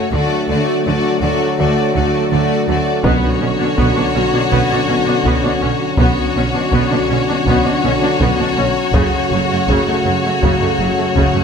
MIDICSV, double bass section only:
0, 0, Header, 1, 2, 480
1, 0, Start_track
1, 0, Key_signature, 2, "minor"
1, 0, Tempo, 736196
1, 76, Time_signature, 4, 2, 24, 8
1, 7458, End_track
2, 0, Start_track
2, 0, Title_t, "Double bass section"
2, 0, Program_c, 0, 48
2, 73, Note_on_c, 0, 38, 54
2, 125, Note_off_c, 0, 38, 0
2, 316, Note_on_c, 0, 38, 53
2, 368, Note_off_c, 0, 38, 0
2, 557, Note_on_c, 0, 38, 52
2, 609, Note_off_c, 0, 38, 0
2, 790, Note_on_c, 0, 38, 56
2, 842, Note_off_c, 0, 38, 0
2, 1036, Note_on_c, 0, 38, 64
2, 1088, Note_off_c, 0, 38, 0
2, 1276, Note_on_c, 0, 38, 61
2, 1328, Note_off_c, 0, 38, 0
2, 1514, Note_on_c, 0, 38, 55
2, 1566, Note_off_c, 0, 38, 0
2, 1754, Note_on_c, 0, 38, 57
2, 1806, Note_off_c, 0, 38, 0
2, 1992, Note_on_c, 0, 35, 64
2, 2039, Note_off_c, 0, 35, 0
2, 2230, Note_on_c, 0, 35, 50
2, 2277, Note_off_c, 0, 35, 0
2, 2470, Note_on_c, 0, 35, 59
2, 2517, Note_off_c, 0, 35, 0
2, 2709, Note_on_c, 0, 35, 51
2, 2757, Note_off_c, 0, 35, 0
2, 2950, Note_on_c, 0, 35, 66
2, 2997, Note_off_c, 0, 35, 0
2, 3187, Note_on_c, 0, 35, 50
2, 3235, Note_off_c, 0, 35, 0
2, 3425, Note_on_c, 0, 35, 67
2, 3473, Note_off_c, 0, 35, 0
2, 3666, Note_on_c, 0, 35, 53
2, 3713, Note_off_c, 0, 35, 0
2, 3908, Note_on_c, 0, 35, 67
2, 3955, Note_off_c, 0, 35, 0
2, 4149, Note_on_c, 0, 35, 51
2, 4196, Note_off_c, 0, 35, 0
2, 4382, Note_on_c, 0, 35, 65
2, 4431, Note_off_c, 0, 35, 0
2, 4629, Note_on_c, 0, 35, 51
2, 4677, Note_off_c, 0, 35, 0
2, 4865, Note_on_c, 0, 35, 68
2, 4914, Note_off_c, 0, 35, 0
2, 5110, Note_on_c, 0, 35, 51
2, 5158, Note_off_c, 0, 35, 0
2, 5347, Note_on_c, 0, 35, 65
2, 5396, Note_off_c, 0, 35, 0
2, 5586, Note_on_c, 0, 35, 51
2, 5634, Note_off_c, 0, 35, 0
2, 5823, Note_on_c, 0, 30, 62
2, 5873, Note_off_c, 0, 30, 0
2, 6068, Note_on_c, 0, 30, 52
2, 6118, Note_off_c, 0, 30, 0
2, 6311, Note_on_c, 0, 30, 62
2, 6360, Note_off_c, 0, 30, 0
2, 6551, Note_on_c, 0, 30, 45
2, 6600, Note_off_c, 0, 30, 0
2, 6792, Note_on_c, 0, 30, 65
2, 6842, Note_off_c, 0, 30, 0
2, 7033, Note_on_c, 0, 30, 46
2, 7082, Note_off_c, 0, 30, 0
2, 7274, Note_on_c, 0, 30, 59
2, 7322, Note_off_c, 0, 30, 0
2, 7458, End_track
0, 0, End_of_file